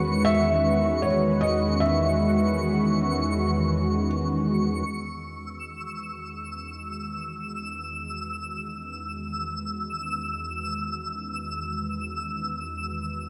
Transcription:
Already playing: E2 D#3 G#3 C#4 F#4 B4 C#6
0.25 E5
1.02 C#5
1.41 D#5
1.80 E5
4.89 E6

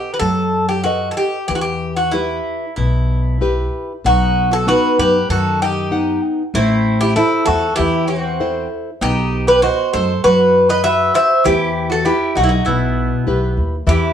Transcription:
Already playing: G4
0.14 B4
0.19 F#2 F#3 A4
0.69 G4
0.84 F#4 A4 B4 D#5
1.11 A4
1.17 G4
1.48 E2 E3 G4
1.55 F#4
1.61 G4
1.96 F#4
2.11 E4 G4 B4
2.76 B1 B2 E4
3.41 E4 G4 B4
4.04 B1 B2 D#4 F#4
4.51 F#4 A4
4.67 B3 D#4 F#4 B4 F#5
4.98 F#2 G4 B4
5.29 F#2 D#3 F#4 A4
5.62 D#4 G4
5.91 B3 D#4 F#5
6.54 A1 A3 C4 E4
7.01 E4 G4
7.16 E4 A4 C5
7.45 E2 F#4 A4
7.76 E2 E3 E4 G4
8.07 C4 F#4
8.40 E4 A4 C5
9.01 B1 B3 D#4 G4
9.47 G4 B4
9.62 F#4 C5 D#5
9.93 F#2 A4 C5
10.24 F#2 F#3 F#4 B4
10.69 B4 D#5
10.84 F#4 B4 E5 F#5
11.14 C5 E5
11.44 E2 E3 E4 G4
11.90 F#4 A4
12.05 E4 G4 B4
12.35 B1 D#4 F#4
12.42 C4 E4
12.47 D#4 F#4
12.65 B1 B2 B3 E4
13.27 B1 E4 G4 B4
13.57 D#2
13.87 E2 E3 E4 G4

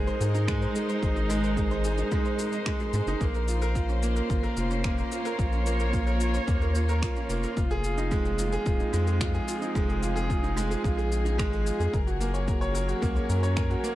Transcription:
Already playing: G#3 D#4 G#4 A#4 C5
0.07 C5, shaker
0.20 G#2 G#4, shaker
0.34 D#4, shaker
0.48 G#3, finger snap, kick, shaker
0.62 C5, shaker
0.68 C5
0.75 G#4, shaker
0.89 C5, shaker
1.03 G#1 G#4, kick, shaker
1.16 D#4, shaker
1.29 G#3, shaker
1.43 C5, shaker
1.57 G#4, kick, shaker
1.71 C5, shaker
1.84 G#4, shaker
1.98 D#4, shaker
2.12 G#3, kick, shaker
2.25 C5, shaker
2.39 G#3, shaker
2.52 D#5, shaker
2.66 G#3, finger snap, kick, shaker
2.80 G#3, shaker
2.93 G#2 G#3, shaker
3.07 F#1 D#4, shaker
3.20 A#1 A#3, kick, shaker
3.35 A#4, shaker
3.48 F4, shaker
3.62 A#4, shaker
3.75 F4, kick, shaker
3.89 C#4, shaker
4.03 A#3, shaker
4.16 A#4, shaker
4.30 G#1 F4, kick, shaker
4.43 A#4, shaker
4.57 F1 F4, shaker
4.71 C#4, shaker
4.84 A#3, finger snap, kick, shaker
4.98 A#4, shaker
5.12 F4, shaker
5.17 C#5
5.25 A#4, shaker
5.39 A#1 F4, kick, shaker
5.52 C#4, shaker
5.66 A#3, shaker
5.80 A#4, shaker
5.93 F4, kick, shaker
6.07 A#4, shaker
6.20 F4, shaker
6.34 C#4, shaker
6.48 D#2 A#3, kick, shaker
6.61 A#4, shaker
6.75 F4, shaker
6.89 A#4, shaker
7.02 F4, finger snap, kick, shaker
7.16 C#4, shaker
7.29 F1 A#3, shaker
7.43 A#4, shaker
7.57 F1 F3 F4, kick, shaker
7.71 G#4, shaker
7.84 F4, shaker
7.93 C4 G#4
7.98 D#4, shaker
8.11 G#3, kick, shaker
8.25 G#4, shaker
8.39 F4, shaker
8.52 G#4, shaker
8.66 D#1 F4, kick, shaker
8.80 D#4, shaker
8.93 F2 G#3, shaker
9.07 G#4, shaker
9.20 F4, finger snap, kick, shaker
9.34 G#4, shaker
9.48 F4, shaker
9.61 D#4, shaker
9.75 F1 G#3, kick, shaker
9.89 G#4, shaker
10.02 F4, shaker
10.16 G#4, shaker
10.30 F4, kick, shaker
10.43 D#4, shaker
10.57 G#3, shaker
10.70 G#4, shaker
10.84 A#1 F4, kick, shaker
10.97 G#4, shaker
11.11 F4, shaker
11.25 D#4, shaker
11.38 G#1 G#3, finger snap, kick, shaker
11.52 G#4, shaker
11.66 F4, shaker
11.79 F2 G#4, shaker
11.93 F#1 F#3 A#4, kick, shaker
12.07 F#4, shaker
12.20 A#3, shaker
12.34 C#5, shaker
12.47 A#4, kick, shaker
12.53 A#4
12.61 C#5, shaker
12.66 C#4
12.74 A#4, shaker
12.88 F#4, shaker
13.02 C#2 A#3, kick, shaker
13.15 C#5, shaker
13.29 F#2 A#4, shaker
13.43 C#5, shaker
13.56 A#4, finger snap, kick, shaker
13.70 F#4, shaker
13.84 A#3, shaker

